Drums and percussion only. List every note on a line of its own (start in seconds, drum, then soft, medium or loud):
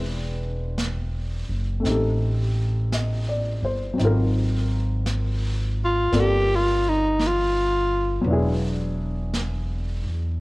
0.78 brush sweep soft
0.78 snare soft
0.78 hi-hat pedal soft
1.85 brush sweep soft
1.85 snare soft
2.92 brush sweep soft
2.92 snare soft
2.92 hi-hat pedal medium
4.00 brush sweep soft
4.00 snare soft
5.06 brush sweep soft
5.06 snare soft
5.06 hi-hat pedal soft
6.12 brush sweep soft
6.12 snare soft
7.20 brush sweep soft
7.20 snare soft
7.20 hi-hat pedal soft
8.26 brush sweep soft
9.33 brush sweep soft
9.33 snare soft
9.33 hi-hat pedal medium